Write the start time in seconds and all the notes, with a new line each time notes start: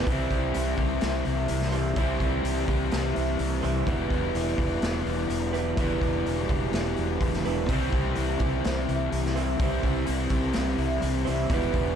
0.06 C2 C3 E3 G3 C4 E4, kick, open hi-hat
0.10 C5
0.31 C2 C4, kick, open hi-hat
0.54 C2 E4, open hi-hat
0.77 C2 G4, kick, open hi-hat
1.01 C2 C4, snare, open hi-hat
1.25 C2 E4, open hi-hat
1.48 C2 C4, open hi-hat
1.62 snare
1.72 C3 E3 G3 C4 E4 C5, open hi-hat
1.95 C2 C3 E3 G3 C4 E4, kick, open hi-hat
2.00 C5
2.20 C2 C4, kick, open hi-hat
2.44 C2 E4, open hi-hat
2.67 C2 G4, kick, open hi-hat
2.91 C2 C4, snare, open hi-hat
3.14 C2 E4, open hi-hat
3.37 C2 C4, open hi-hat
3.62 C2 E3 G3 C4 E4 C5, open hi-hat
3.66 C3 E3
3.86 E1 E2 B2 E3 G3 B3 D4 E4 B4, kick, open hi-hat
4.10 E1 B3, kick, open hi-hat
4.35 E1 D4, open hi-hat
4.58 E1 G4, kick, open hi-hat
4.82 E1 B3, snare, open hi-hat
5.06 E1 D4, open hi-hat
5.30 E1 B3, open hi-hat
5.53 E3 G3 B3 D4 E4 B4, open hi-hat
5.76 E1 E2 B2 E3 G3 B3 D4 E4 B4, kick, open hi-hat
6.01 E1 B3, kick, open hi-hat
6.26 E1 D4, open hi-hat
6.49 E1 G4, kick, open hi-hat
6.73 E1 B3, snare, open hi-hat
6.97 E1 D4, open hi-hat
7.21 E1 B3, kick, open hi-hat
7.33 snare
7.45 E1 G3 B3 D4 E4 B4, open hi-hat
7.49 E3
7.69 C2 C3 E3 G3 C4 E4, kick, open hi-hat
7.73 C5
7.92 C2 C4, kick, open hi-hat
8.15 C2 E4, open hi-hat
8.39 C2 G4, kick, open hi-hat
8.64 C2 C4, snare, open hi-hat
8.89 C2 E4, open hi-hat
9.12 C2 C4, open hi-hat
9.26 snare
9.36 C3 E3 G3 C4 E4 C5, open hi-hat
9.59 C2 C3 E3 G3 C4 E4, kick, open hi-hat
9.63 C5
9.83 C2 C4, kick, open hi-hat
10.07 C2 E4, open hi-hat
10.30 C2 G4, kick, open hi-hat
10.53 C2 C4, snare, open hi-hat
10.78 C2 E4, open hi-hat
11.02 C2 C4, open hi-hat
11.25 C2 C3 E3 G3 C4 E4 C5, open hi-hat
11.49 E1 E2 B2 E3 G3 B3 D4 E4 B4, kick, open hi-hat
11.73 E1 B3, kick, open hi-hat